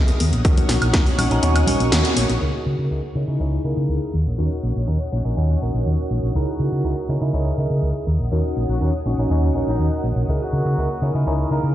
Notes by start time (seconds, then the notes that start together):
Already playing: D#4 E4 G#4 A#4 D#6
0.08 closed hi-hat
0.20 D#2 C#5 F#5, open hi-hat, high conga, shaker
0.33 A#1, closed hi-hat, shaker
0.45 C#4 D#4 F#4 A#4, kick, closed hi-hat
0.57 closed hi-hat, high conga, low conga
0.69 A#1, snare, open hi-hat, shaker
0.81 A#1, closed hi-hat, high woodblock, shaker
0.94 C#4 D#4 F#4 A#4, kick, snare, closed hi-hat
1.06 open hi-hat, high conga
1.18 A#1 C#4 D#4 F#4 C#5, open hi-hat, low conga, high woodblock, shaker
1.31 A#1 C#4 D#4 F#4 A#4, closed hi-hat, shaker
1.43 D#2 C#4 D#4 F#4 C#5, closed hi-hat, high conga, shaker
1.56 closed hi-hat, high woodblock
1.67 A#1 C#4 D#4 F#4 A#4, open hi-hat, low conga, shaker
1.80 A#1, closed hi-hat, high conga, shaker
1.92 D#2, snare, closed hi-hat
2.05 closed hi-hat
2.16 A#1, open hi-hat, high conga, shaker
2.29 A#1, closed hi-hat, shaker
2.41 C#2 D#4 E4 G#4 A#4 D#6, crash
2.54 F#3 F#4
2.66 C#3
2.79 C#3
2.91 C#2 D#4 E4 G#4 A#4
3.15 C#3 D#4 E4 G#4 C#5
3.28 C#3 D#4 E4 G#4 A#4
3.40 C#2 D#4 E4 G#4 C#5
3.64 C#3 A#3 D#4 E4 G#4 A#4
3.77 C#3
3.89 C#2
4.14 D#2 C#5 F#5
4.26 A#1
4.38 D#2 C#4 D#4 F#4 A#4
4.63 A#1
4.76 A#1
4.87 D#2 C#4 D#4 F#4 A#4
5.12 A#1 C#4 D#4 F#4 C#5
5.25 A#1 C#4 D#4 F#4 A#4
5.36 D#2 C#4 D#4 F#4 C#5
5.61 A#1 C#4 D#4 F#4 A#4
5.74 A#1
5.86 D#2
6.11 A#1
6.23 A#1
6.35 C#2 D#4 E4 G#4 A#4
6.48 F#3 F#4
6.59 C#3
6.72 C#3
6.84 C#2 D#4 E4 G#4 A#4
7.09 C#3 D#4 E4 G#4 C#5
7.21 C#3 D#4 E4 G#4 A#4
7.33 C#2 D#4 E4 G#4 C#5
7.58 C#3 D#4 E4 G#4 A#4
7.70 C#3
7.82 C#2
8.07 D#2 C#5 F#5
8.20 A#1
8.32 D#2 C#4 D#4 F#4 A#4
8.57 A#1
8.69 A#1 F#3 F#4
8.81 D#2 F#3 C#4 D#4 F#4 A#4
9.06 A#1 C#4 D#4 F#4 C#5
9.18 A#1 C#4 D#4 F#4 A#4
9.30 D#2 C#4 D#4 F#4 C#5
9.54 A#1 C#4 D#4 F#4 A#4
9.67 A#1 D#3 D#4
9.79 D#2
10.04 A#1
10.16 A#1
10.28 C#2 D#4 E4 G#4 A#4
10.41 F#3 F#4
10.53 C#3
10.65 C#3
10.77 C#2 D#4 E4 G#4 A#4
11.02 C#3 D#4 E4 G#4 C#5
11.14 C#3 D#4 E4 G#4 A#4
11.26 C#2 D#4 E4 G#4 C#5
11.51 C#3 A#3 D#4 E4 G#4 A#4
11.63 C#3